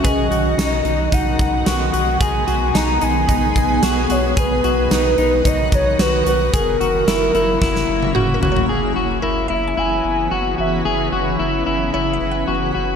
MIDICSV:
0, 0, Header, 1, 7, 480
1, 0, Start_track
1, 0, Tempo, 540541
1, 43, Time_signature, 4, 2, 24, 8
1, 11508, End_track
2, 0, Start_track
2, 0, Title_t, "Soft synth lead"
2, 0, Program_c, 0, 80
2, 49, Note_on_c, 0, 75, 109
2, 1009, Note_on_c, 0, 78, 110
2, 1022, Note_off_c, 0, 75, 0
2, 1246, Note_off_c, 0, 78, 0
2, 1255, Note_on_c, 0, 78, 91
2, 1472, Note_off_c, 0, 78, 0
2, 1488, Note_on_c, 0, 78, 96
2, 1975, Note_on_c, 0, 80, 114
2, 1989, Note_off_c, 0, 78, 0
2, 2454, Note_on_c, 0, 82, 112
2, 2467, Note_off_c, 0, 80, 0
2, 2693, Note_on_c, 0, 80, 111
2, 2706, Note_off_c, 0, 82, 0
2, 3652, Note_on_c, 0, 73, 86
2, 3665, Note_off_c, 0, 80, 0
2, 3887, Note_off_c, 0, 73, 0
2, 3901, Note_on_c, 0, 71, 116
2, 4864, Note_on_c, 0, 75, 100
2, 4877, Note_off_c, 0, 71, 0
2, 5093, Note_off_c, 0, 75, 0
2, 5104, Note_on_c, 0, 73, 91
2, 5339, Note_on_c, 0, 71, 89
2, 5353, Note_off_c, 0, 73, 0
2, 5571, Note_off_c, 0, 71, 0
2, 5578, Note_on_c, 0, 71, 88
2, 5794, Note_off_c, 0, 71, 0
2, 5821, Note_on_c, 0, 70, 106
2, 7216, Note_off_c, 0, 70, 0
2, 8463, Note_on_c, 0, 76, 99
2, 8690, Note_on_c, 0, 80, 115
2, 8703, Note_off_c, 0, 76, 0
2, 9170, Note_on_c, 0, 78, 102
2, 9183, Note_off_c, 0, 80, 0
2, 9415, Note_on_c, 0, 76, 86
2, 9428, Note_off_c, 0, 78, 0
2, 9889, Note_off_c, 0, 76, 0
2, 11508, End_track
3, 0, Start_track
3, 0, Title_t, "Synth pluck"
3, 0, Program_c, 1, 84
3, 40, Note_on_c, 1, 71, 80
3, 1308, Note_off_c, 1, 71, 0
3, 3166, Note_on_c, 1, 68, 51
3, 4089, Note_off_c, 1, 68, 0
3, 7235, Note_on_c, 1, 66, 78
3, 7408, Note_on_c, 1, 70, 54
3, 7563, Note_on_c, 1, 73, 50
3, 7923, Note_off_c, 1, 66, 0
3, 8070, Note_off_c, 1, 70, 0
3, 8190, Note_on_c, 1, 70, 73
3, 8207, Note_off_c, 1, 73, 0
3, 8420, Note_on_c, 1, 76, 68
3, 8591, Note_on_c, 1, 80, 58
3, 9464, Note_off_c, 1, 70, 0
3, 9699, Note_off_c, 1, 76, 0
3, 9844, Note_off_c, 1, 80, 0
3, 10601, Note_on_c, 1, 73, 52
3, 10775, Note_on_c, 1, 76, 56
3, 10935, Note_on_c, 1, 78, 57
3, 11508, Note_off_c, 1, 73, 0
3, 11508, Note_off_c, 1, 76, 0
3, 11508, Note_off_c, 1, 78, 0
3, 11508, End_track
4, 0, Start_track
4, 0, Title_t, "Clean electric guitar"
4, 0, Program_c, 2, 27
4, 34, Note_on_c, 2, 68, 84
4, 270, Note_off_c, 2, 68, 0
4, 274, Note_on_c, 2, 66, 66
4, 516, Note_on_c, 2, 63, 77
4, 518, Note_off_c, 2, 66, 0
4, 745, Note_off_c, 2, 63, 0
4, 756, Note_on_c, 2, 63, 72
4, 986, Note_off_c, 2, 63, 0
4, 997, Note_on_c, 2, 63, 88
4, 1477, Note_on_c, 2, 66, 75
4, 1480, Note_off_c, 2, 63, 0
4, 1705, Note_off_c, 2, 66, 0
4, 1715, Note_on_c, 2, 66, 67
4, 1953, Note_off_c, 2, 66, 0
4, 1957, Note_on_c, 2, 68, 86
4, 2194, Note_off_c, 2, 68, 0
4, 2198, Note_on_c, 2, 66, 72
4, 2437, Note_on_c, 2, 63, 84
4, 2440, Note_off_c, 2, 66, 0
4, 2668, Note_off_c, 2, 63, 0
4, 2679, Note_on_c, 2, 63, 73
4, 2908, Note_off_c, 2, 63, 0
4, 2918, Note_on_c, 2, 63, 81
4, 3400, Note_off_c, 2, 63, 0
4, 3401, Note_on_c, 2, 66, 74
4, 3629, Note_off_c, 2, 66, 0
4, 3639, Note_on_c, 2, 66, 67
4, 3874, Note_off_c, 2, 66, 0
4, 3878, Note_on_c, 2, 68, 88
4, 4118, Note_off_c, 2, 68, 0
4, 4122, Note_on_c, 2, 66, 68
4, 4362, Note_off_c, 2, 66, 0
4, 4363, Note_on_c, 2, 63, 84
4, 4591, Note_off_c, 2, 63, 0
4, 4602, Note_on_c, 2, 63, 82
4, 4830, Note_off_c, 2, 63, 0
4, 4841, Note_on_c, 2, 63, 85
4, 5322, Note_off_c, 2, 63, 0
4, 5323, Note_on_c, 2, 66, 72
4, 5554, Note_off_c, 2, 66, 0
4, 5565, Note_on_c, 2, 66, 61
4, 5800, Note_off_c, 2, 66, 0
4, 5803, Note_on_c, 2, 68, 89
4, 6040, Note_off_c, 2, 68, 0
4, 6043, Note_on_c, 2, 66, 73
4, 6280, Note_off_c, 2, 66, 0
4, 6284, Note_on_c, 2, 64, 81
4, 6514, Note_off_c, 2, 64, 0
4, 6525, Note_on_c, 2, 64, 75
4, 6753, Note_off_c, 2, 64, 0
4, 6764, Note_on_c, 2, 64, 83
4, 7241, Note_off_c, 2, 64, 0
4, 7244, Note_on_c, 2, 66, 73
4, 7472, Note_off_c, 2, 66, 0
4, 7482, Note_on_c, 2, 66, 69
4, 7715, Note_off_c, 2, 66, 0
4, 7718, Note_on_c, 2, 68, 91
4, 7953, Note_off_c, 2, 68, 0
4, 7956, Note_on_c, 2, 66, 76
4, 8191, Note_off_c, 2, 66, 0
4, 8195, Note_on_c, 2, 64, 86
4, 8425, Note_off_c, 2, 64, 0
4, 8436, Note_on_c, 2, 64, 76
4, 8668, Note_off_c, 2, 64, 0
4, 8679, Note_on_c, 2, 64, 96
4, 9154, Note_off_c, 2, 64, 0
4, 9157, Note_on_c, 2, 66, 83
4, 9384, Note_off_c, 2, 66, 0
4, 9395, Note_on_c, 2, 66, 68
4, 9634, Note_off_c, 2, 66, 0
4, 9637, Note_on_c, 2, 68, 97
4, 9874, Note_off_c, 2, 68, 0
4, 9878, Note_on_c, 2, 66, 82
4, 10113, Note_off_c, 2, 66, 0
4, 10116, Note_on_c, 2, 64, 78
4, 10348, Note_off_c, 2, 64, 0
4, 10358, Note_on_c, 2, 64, 77
4, 10588, Note_off_c, 2, 64, 0
4, 10599, Note_on_c, 2, 64, 93
4, 11074, Note_off_c, 2, 64, 0
4, 11078, Note_on_c, 2, 66, 75
4, 11307, Note_off_c, 2, 66, 0
4, 11318, Note_on_c, 2, 66, 70
4, 11508, Note_off_c, 2, 66, 0
4, 11508, End_track
5, 0, Start_track
5, 0, Title_t, "Ambient pad"
5, 0, Program_c, 3, 92
5, 0, Note_on_c, 3, 51, 71
5, 0, Note_on_c, 3, 66, 74
5, 39, Note_on_c, 3, 59, 67
5, 44, Note_on_c, 3, 56, 65
5, 1926, Note_off_c, 3, 66, 0
5, 1962, Note_on_c, 3, 68, 83
5, 3846, Note_off_c, 3, 51, 0
5, 3848, Note_off_c, 3, 56, 0
5, 3863, Note_off_c, 3, 68, 0
5, 3885, Note_on_c, 3, 54, 61
5, 3889, Note_on_c, 3, 66, 84
5, 3893, Note_on_c, 3, 51, 75
5, 5765, Note_off_c, 3, 59, 0
5, 5786, Note_off_c, 3, 66, 0
5, 5789, Note_off_c, 3, 51, 0
5, 5802, Note_on_c, 3, 64, 80
5, 5804, Note_on_c, 3, 49, 72
5, 5805, Note_on_c, 3, 58, 65
5, 7688, Note_off_c, 3, 54, 0
5, 7703, Note_off_c, 3, 64, 0
5, 7704, Note_off_c, 3, 49, 0
5, 7704, Note_off_c, 3, 58, 0
5, 7731, Note_on_c, 3, 52, 76
5, 7731, Note_on_c, 3, 54, 68
5, 7732, Note_on_c, 3, 49, 75
5, 7734, Note_on_c, 3, 59, 70
5, 11508, Note_off_c, 3, 49, 0
5, 11508, Note_off_c, 3, 52, 0
5, 11508, Note_off_c, 3, 54, 0
5, 11508, Note_off_c, 3, 59, 0
5, 11508, End_track
6, 0, Start_track
6, 0, Title_t, "Sub bass"
6, 0, Program_c, 4, 38
6, 41, Note_on_c, 4, 35, 100
6, 253, Note_off_c, 4, 35, 0
6, 273, Note_on_c, 4, 35, 95
6, 488, Note_off_c, 4, 35, 0
6, 515, Note_on_c, 4, 35, 93
6, 730, Note_off_c, 4, 35, 0
6, 754, Note_on_c, 4, 35, 103
6, 969, Note_off_c, 4, 35, 0
6, 998, Note_on_c, 4, 35, 100
6, 1211, Note_off_c, 4, 35, 0
6, 1238, Note_on_c, 4, 35, 94
6, 1451, Note_off_c, 4, 35, 0
6, 1479, Note_on_c, 4, 35, 91
6, 1692, Note_off_c, 4, 35, 0
6, 1720, Note_on_c, 4, 35, 94
6, 1932, Note_off_c, 4, 35, 0
6, 1958, Note_on_c, 4, 35, 87
6, 2171, Note_off_c, 4, 35, 0
6, 2202, Note_on_c, 4, 35, 96
6, 2413, Note_off_c, 4, 35, 0
6, 2442, Note_on_c, 4, 35, 102
6, 2653, Note_off_c, 4, 35, 0
6, 2685, Note_on_c, 4, 35, 93
6, 2895, Note_off_c, 4, 35, 0
6, 2919, Note_on_c, 4, 35, 95
6, 3132, Note_off_c, 4, 35, 0
6, 3161, Note_on_c, 4, 35, 91
6, 3373, Note_off_c, 4, 35, 0
6, 3399, Note_on_c, 4, 35, 99
6, 3612, Note_off_c, 4, 35, 0
6, 3643, Note_on_c, 4, 35, 86
6, 3854, Note_off_c, 4, 35, 0
6, 3881, Note_on_c, 4, 35, 98
6, 4093, Note_off_c, 4, 35, 0
6, 4123, Note_on_c, 4, 35, 98
6, 4334, Note_off_c, 4, 35, 0
6, 4362, Note_on_c, 4, 35, 106
6, 4573, Note_off_c, 4, 35, 0
6, 4598, Note_on_c, 4, 35, 90
6, 4811, Note_off_c, 4, 35, 0
6, 4842, Note_on_c, 4, 35, 104
6, 5053, Note_off_c, 4, 35, 0
6, 5080, Note_on_c, 4, 35, 105
6, 5292, Note_off_c, 4, 35, 0
6, 5319, Note_on_c, 4, 35, 94
6, 5532, Note_off_c, 4, 35, 0
6, 5559, Note_on_c, 4, 35, 100
6, 5772, Note_off_c, 4, 35, 0
6, 5802, Note_on_c, 4, 30, 104
6, 6014, Note_off_c, 4, 30, 0
6, 6042, Note_on_c, 4, 30, 82
6, 6253, Note_off_c, 4, 30, 0
6, 6279, Note_on_c, 4, 30, 101
6, 6492, Note_off_c, 4, 30, 0
6, 6522, Note_on_c, 4, 30, 87
6, 6734, Note_off_c, 4, 30, 0
6, 6762, Note_on_c, 4, 30, 103
6, 6973, Note_off_c, 4, 30, 0
6, 7005, Note_on_c, 4, 30, 100
6, 7215, Note_off_c, 4, 30, 0
6, 7240, Note_on_c, 4, 30, 95
6, 7452, Note_off_c, 4, 30, 0
6, 7480, Note_on_c, 4, 30, 104
6, 7692, Note_off_c, 4, 30, 0
6, 7723, Note_on_c, 4, 30, 101
6, 7934, Note_off_c, 4, 30, 0
6, 7965, Note_on_c, 4, 30, 87
6, 8175, Note_off_c, 4, 30, 0
6, 8205, Note_on_c, 4, 30, 114
6, 8415, Note_off_c, 4, 30, 0
6, 8442, Note_on_c, 4, 30, 107
6, 8653, Note_off_c, 4, 30, 0
6, 8681, Note_on_c, 4, 30, 111
6, 8893, Note_off_c, 4, 30, 0
6, 8921, Note_on_c, 4, 30, 105
6, 9133, Note_off_c, 4, 30, 0
6, 9159, Note_on_c, 4, 30, 96
6, 9372, Note_off_c, 4, 30, 0
6, 9403, Note_on_c, 4, 30, 105
6, 9614, Note_off_c, 4, 30, 0
6, 9639, Note_on_c, 4, 30, 96
6, 9852, Note_off_c, 4, 30, 0
6, 9878, Note_on_c, 4, 30, 107
6, 10091, Note_off_c, 4, 30, 0
6, 10121, Note_on_c, 4, 30, 107
6, 10333, Note_off_c, 4, 30, 0
6, 10366, Note_on_c, 4, 30, 102
6, 10576, Note_off_c, 4, 30, 0
6, 10609, Note_on_c, 4, 30, 96
6, 10817, Note_off_c, 4, 30, 0
6, 10843, Note_on_c, 4, 30, 98
6, 11054, Note_off_c, 4, 30, 0
6, 11085, Note_on_c, 4, 30, 91
6, 11295, Note_off_c, 4, 30, 0
6, 11329, Note_on_c, 4, 30, 106
6, 11508, Note_off_c, 4, 30, 0
6, 11508, End_track
7, 0, Start_track
7, 0, Title_t, "Drums"
7, 41, Note_on_c, 9, 36, 105
7, 43, Note_on_c, 9, 42, 69
7, 129, Note_off_c, 9, 36, 0
7, 132, Note_off_c, 9, 42, 0
7, 281, Note_on_c, 9, 42, 45
7, 370, Note_off_c, 9, 42, 0
7, 522, Note_on_c, 9, 42, 63
7, 523, Note_on_c, 9, 54, 60
7, 524, Note_on_c, 9, 38, 100
7, 611, Note_off_c, 9, 42, 0
7, 611, Note_off_c, 9, 54, 0
7, 612, Note_off_c, 9, 38, 0
7, 755, Note_on_c, 9, 42, 42
7, 844, Note_off_c, 9, 42, 0
7, 997, Note_on_c, 9, 36, 82
7, 998, Note_on_c, 9, 42, 65
7, 1086, Note_off_c, 9, 36, 0
7, 1087, Note_off_c, 9, 42, 0
7, 1236, Note_on_c, 9, 42, 44
7, 1238, Note_on_c, 9, 36, 91
7, 1325, Note_off_c, 9, 42, 0
7, 1326, Note_off_c, 9, 36, 0
7, 1478, Note_on_c, 9, 38, 108
7, 1478, Note_on_c, 9, 42, 76
7, 1479, Note_on_c, 9, 54, 61
7, 1566, Note_off_c, 9, 38, 0
7, 1566, Note_off_c, 9, 42, 0
7, 1567, Note_off_c, 9, 54, 0
7, 1720, Note_on_c, 9, 42, 54
7, 1808, Note_off_c, 9, 42, 0
7, 1958, Note_on_c, 9, 42, 71
7, 1959, Note_on_c, 9, 36, 103
7, 2047, Note_off_c, 9, 42, 0
7, 2048, Note_off_c, 9, 36, 0
7, 2200, Note_on_c, 9, 42, 48
7, 2289, Note_off_c, 9, 42, 0
7, 2441, Note_on_c, 9, 42, 67
7, 2442, Note_on_c, 9, 38, 106
7, 2442, Note_on_c, 9, 54, 59
7, 2530, Note_off_c, 9, 42, 0
7, 2530, Note_off_c, 9, 54, 0
7, 2531, Note_off_c, 9, 38, 0
7, 2676, Note_on_c, 9, 42, 47
7, 2765, Note_off_c, 9, 42, 0
7, 2919, Note_on_c, 9, 36, 78
7, 2921, Note_on_c, 9, 42, 62
7, 3008, Note_off_c, 9, 36, 0
7, 3010, Note_off_c, 9, 42, 0
7, 3159, Note_on_c, 9, 42, 49
7, 3160, Note_on_c, 9, 36, 81
7, 3248, Note_off_c, 9, 36, 0
7, 3248, Note_off_c, 9, 42, 0
7, 3399, Note_on_c, 9, 38, 108
7, 3399, Note_on_c, 9, 42, 82
7, 3400, Note_on_c, 9, 54, 57
7, 3488, Note_off_c, 9, 38, 0
7, 3488, Note_off_c, 9, 42, 0
7, 3489, Note_off_c, 9, 54, 0
7, 3639, Note_on_c, 9, 42, 56
7, 3727, Note_off_c, 9, 42, 0
7, 3880, Note_on_c, 9, 42, 64
7, 3881, Note_on_c, 9, 36, 116
7, 3968, Note_off_c, 9, 42, 0
7, 3970, Note_off_c, 9, 36, 0
7, 4122, Note_on_c, 9, 42, 45
7, 4210, Note_off_c, 9, 42, 0
7, 4362, Note_on_c, 9, 42, 69
7, 4362, Note_on_c, 9, 54, 60
7, 4363, Note_on_c, 9, 38, 96
7, 4450, Note_off_c, 9, 42, 0
7, 4451, Note_off_c, 9, 54, 0
7, 4452, Note_off_c, 9, 38, 0
7, 4600, Note_on_c, 9, 42, 44
7, 4688, Note_off_c, 9, 42, 0
7, 4841, Note_on_c, 9, 36, 84
7, 4845, Note_on_c, 9, 42, 63
7, 4930, Note_off_c, 9, 36, 0
7, 4934, Note_off_c, 9, 42, 0
7, 5081, Note_on_c, 9, 36, 95
7, 5082, Note_on_c, 9, 42, 47
7, 5170, Note_off_c, 9, 36, 0
7, 5171, Note_off_c, 9, 42, 0
7, 5322, Note_on_c, 9, 38, 109
7, 5322, Note_on_c, 9, 42, 72
7, 5323, Note_on_c, 9, 54, 58
7, 5411, Note_off_c, 9, 38, 0
7, 5411, Note_off_c, 9, 42, 0
7, 5412, Note_off_c, 9, 54, 0
7, 5562, Note_on_c, 9, 42, 54
7, 5651, Note_off_c, 9, 42, 0
7, 5804, Note_on_c, 9, 36, 113
7, 5804, Note_on_c, 9, 42, 70
7, 5893, Note_off_c, 9, 36, 0
7, 5893, Note_off_c, 9, 42, 0
7, 6048, Note_on_c, 9, 42, 47
7, 6136, Note_off_c, 9, 42, 0
7, 6284, Note_on_c, 9, 42, 64
7, 6285, Note_on_c, 9, 54, 59
7, 6286, Note_on_c, 9, 38, 106
7, 6373, Note_off_c, 9, 42, 0
7, 6374, Note_off_c, 9, 38, 0
7, 6374, Note_off_c, 9, 54, 0
7, 6524, Note_on_c, 9, 42, 43
7, 6613, Note_off_c, 9, 42, 0
7, 6763, Note_on_c, 9, 36, 86
7, 6768, Note_on_c, 9, 38, 56
7, 6852, Note_off_c, 9, 36, 0
7, 6857, Note_off_c, 9, 38, 0
7, 6886, Note_on_c, 9, 38, 54
7, 6975, Note_off_c, 9, 38, 0
7, 7126, Note_on_c, 9, 48, 60
7, 7215, Note_off_c, 9, 48, 0
7, 7243, Note_on_c, 9, 47, 78
7, 7332, Note_off_c, 9, 47, 0
7, 7483, Note_on_c, 9, 43, 99
7, 7572, Note_off_c, 9, 43, 0
7, 7606, Note_on_c, 9, 43, 83
7, 7695, Note_off_c, 9, 43, 0
7, 11508, End_track
0, 0, End_of_file